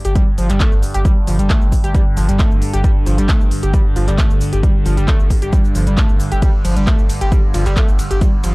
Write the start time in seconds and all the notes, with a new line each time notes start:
Already playing: G2 D3
0.05 G1 G4, closed hi-hat, shaker
0.15 G3, kick, closed hi-hat, shaker
0.38 G1 F3, open hi-hat, shaker
0.50 G1 G3, clap, closed hi-hat, shaker
0.60 A3, kick, clap, closed hi-hat, shaker
0.72 G1, shaker
0.83 open hi-hat, shaker
0.94 G1 G4, closed hi-hat, shaker
1.05 G3, kick, closed hi-hat, shaker
1.27 G1 F3, open hi-hat, shaker
1.39 G1 G3, closed hi-hat, shaker
1.50 A3, kick, clap, closed hi-hat, shaker
1.62 G1, shaker
1.72 kick, open hi-hat, shaker
1.84 G1 G4, closed hi-hat, shaker
1.95 G3, kick, closed hi-hat, shaker
2.17 G1 F3, open hi-hat, shaker
2.29 G1 G3, closed hi-hat, shaker
2.39 A3, kick, clap, closed hi-hat, shaker
2.51 G1, shaker
2.62 open hi-hat, shaker
2.73 G1 G4, closed hi-hat, shaker
2.84 G3, kick, closed hi-hat, shaker
3.06 G1 F3, open hi-hat, shaker
3.18 G1 G3, closed hi-hat, shaker
3.29 A3, kick, clap, closed hi-hat, shaker
3.41 G1, shaker
3.51 open hi-hat, shaker
3.63 G1 G4, closed hi-hat, shaker
3.74 G3, kick, closed hi-hat, shaker
3.96 G1 F3, open hi-hat, shaker
4.08 G1 G3, clap, closed hi-hat, shaker
4.18 A3, kick, clap, closed hi-hat, shaker
4.30 G1, shaker
4.41 open hi-hat, shaker
4.53 G1 G4, closed hi-hat, shaker
4.63 G3, kick, closed hi-hat, shaker
4.86 G1 F3, open hi-hat, shaker
4.97 G1 G3, closed hi-hat, shaker
5.08 A3, kick, clap, closed hi-hat, shaker
5.20 G1, shaker
5.30 kick, open hi-hat, shaker
5.42 G1 G4, closed hi-hat, shaker
5.53 G3, kick, closed hi-hat, shaker
5.65 shaker
5.75 G1 F3, open hi-hat, shaker
5.87 G1 G3, closed hi-hat, shaker
5.98 A3, kick, clap, closed hi-hat, shaker
6.09 G1, shaker
6.20 open hi-hat, shaker
6.32 G1 G4, closed hi-hat, shaker
6.42 G3, kick, closed hi-hat, ride, shaker
6.65 G1 F3, open hi-hat, ride, shaker
6.76 G1 G3, closed hi-hat, shaker
6.87 A3, kick, clap, closed hi-hat, ride, shaker
6.99 G1, shaker
7.10 open hi-hat, ride, shaker
7.21 G1 G4, closed hi-hat, shaker
7.32 G3, kick, closed hi-hat, ride, shaker
7.54 G1 F3, open hi-hat, ride, shaker
7.66 G1 G3, clap, closed hi-hat, shaker
7.77 A3, kick, clap, closed hi-hat, ride, shaker
7.88 G1, shaker
7.99 open hi-hat, ride, shaker
8.11 G1 G4, closed hi-hat, shaker
8.21 G3, kick, closed hi-hat, ride, shaker
8.44 G1 F3, open hi-hat, ride, shaker